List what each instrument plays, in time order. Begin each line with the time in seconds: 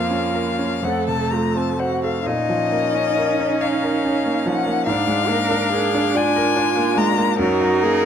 Already playing: grand piano F2 F3 A#3, viola A#3, cello F4, violin F5
0.10 grand piano C#4
0.34 grand piano A#4
0.59 grand piano C#4
0.83 grand piano F2, viola A3, cello A4, violin F#5
1.08 grand piano C3, violin A5
1.31 grand piano A3, cello F4, violin A#5
1.56 grand piano C4, violin A5
1.79 cello F#4, grand piano C5, violin F#5
2.04 grand piano A4, violin F5
2.25 grand piano A#2, viola C#4, cello D#4, violin D#5
2.49 grand piano F3
2.72 grand piano A#3
2.94 grand piano C#4
3.17 grand piano A#4
3.39 grand piano C#4
3.61 grand piano C#5, violin F5
3.83 grand piano A#4
4.05 grand piano C#4
4.25 grand piano A#3
4.46 grand piano F3, violin F#5
4.66 grand piano A#3
4.86 grand piano G#2, viola D4, cello D4, violin F5
5.07 grand piano G#3
5.28 grand piano A#3, cello A#4
5.50 grand piano D4
5.73 cello G#4, grand piano A#4
5.95 grand piano D4
6.15 cello F4, grand piano D5, violin G#5
6.36 grand piano A#4
6.57 grand piano D4
6.77 grand piano A#3
6.97 grand piano G#3, violin A#5
7.18 grand piano A#3
7.39 grand piano F#2, viola D#4, cello F#4, violin A#4
7.61 grand piano F#3
7.83 grand piano A#3, cello G#4